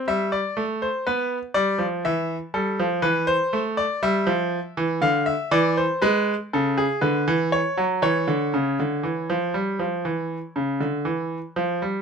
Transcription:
0.08 0.38 G3 medium
0.08 0.31 E5 medium
0.32 0.62 D5 medium
0.57 0.87 A3 medium
0.82 1.05 C5 medium
1.07 1.37 B3 medium
1.07 1.37 B4 medium
1.54 1.78 G3 medium
1.54 1.85 D5 medium
1.78 2.03 F3 medium
2.05 2.35 E3 medium
2.05 2.35 E5 medium
2.54 2.77 G3 medium
2.54 2.84 A4 medium
2.79 3.03 F3 medium
3.02 3.33 E3 medium
3.02 3.27 B4 medium
3.27 3.58 C5 loud
3.53 3.84 A3 medium
3.77 4.01 D5 medium
4.03 4.27 G3 medium
4.03 4.99 E5 medium
4.27 4.58 F3 medium
4.77 5.01 E3 medium
5.01 5.33 D3 medium
5.01 5.26 F5 medium
5.26 5.51 E5 medium
5.51 5.83 E3 loud
5.51 5.76 D5 medium
5.77 6.01 C5 medium
6.02 6.33 G#3 loud
6.02 6.33 B4 medium
6.53 6.84 C#3 medium
6.53 6.77 A4 medium
6.78 7.01 G#4 medium
7.01 7.26 D3 medium
7.01 7.33 B4 medium
7.28 7.58 E3 medium
7.52 7.83 C#5 medium
7.77 8.02 F#3 medium
8.02 8.27 E3 medium
8.02 11.54 C#5 medium
8.28 8.52 D3 medium
8.54 8.78 C#3 medium
8.80 9.04 D3 medium
9.03 9.28 E3 medium
9.30 9.54 F3 medium
9.54 9.79 G3 medium
9.79 10.04 F3 medium
10.05 10.37 E3 medium
10.56 10.81 C#3 medium
10.80 11.06 D3 medium
11.05 11.37 E3 medium
11.56 11.81 F3 medium
11.82 12.02 G3 medium

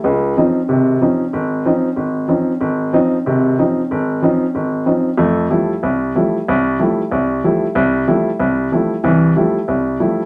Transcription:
0.04 0.32 C#2 medium
0.37 0.59 F3 soft
0.37 0.59 C4 soft
0.37 0.59 C#4 soft
0.37 0.59 D#4 medium
0.69 0.97 G#1 medium
0.69 0.97 C3 medium
1.01 1.23 F3 soft
1.01 1.23 C4 soft
1.01 1.23 C#4 soft
1.01 1.24 D#4 medium
1.33 1.61 G#1 medium
1.65 1.87 F3 medium
1.65 1.87 C4 soft
1.65 1.88 C#4 soft
1.65 1.88 D#4 medium
1.96 2.25 G#1 medium
2.28 2.51 F3 soft
2.28 2.51 C4 soft
2.28 2.51 C#4 soft
2.28 2.51 D#4 soft
2.61 2.89 G#1 medium
2.93 3.15 F3 medium
2.93 3.15 C4 medium
2.93 3.16 C#4 soft
2.93 3.16 D#4 medium
3.26 3.54 G#1 medium
3.26 3.54 C3 medium
3.59 3.80 F3 medium
3.59 3.80 C4 soft
3.59 3.80 C#4 soft
3.59 3.81 D#4 medium
3.91 4.19 G#1 medium
4.22 4.44 F3 medium
4.22 4.44 C4 soft
4.22 4.45 C#4 soft
4.22 4.45 D#4 medium
4.55 4.82 G#1 medium
4.86 5.08 F3 soft
4.86 5.08 C4 soft
4.86 5.08 C#4 soft
4.86 5.08 D#4 medium
5.18 5.46 F2 medium
5.18 5.46 A3 medium
5.50 5.72 F3 medium
5.50 5.72 G3 soft
5.50 5.72 A3 soft
5.50 5.72 E4 medium
5.83 6.11 C2 medium
6.15 6.37 F3 medium
6.15 6.37 G3 soft
6.15 6.37 A3 soft
6.15 6.37 E4 medium
6.48 6.75 C2 medium
6.79 7.01 F3 soft
6.79 7.01 G3 soft
6.79 7.01 A3 medium
6.79 7.01 E4 medium
7.11 7.39 C2 medium
7.44 7.65 F3 medium
7.44 7.65 G3 soft
7.44 7.65 A3 soft
7.44 7.66 E4 medium
7.75 8.03 C2 medium
8.07 8.29 F3 medium
8.07 8.29 G3 soft
8.07 8.29 A3 soft
8.07 8.29 E4 medium
8.39 8.67 C2 medium
8.72 8.93 F3 soft
8.72 8.93 G3 soft
8.72 8.93 A3 soft
8.72 8.94 E4 medium
9.03 9.31 C2 medium
9.03 9.31 E3 medium
9.36 9.57 F3 medium
9.36 9.57 G3 soft
9.36 9.58 A3 soft
9.36 9.57 E4 medium
9.68 9.95 C2 medium
10.00 10.21 F3 soft
10.00 10.21 G3 soft
10.00 10.21 A3 soft
10.00 10.21 E4 medium

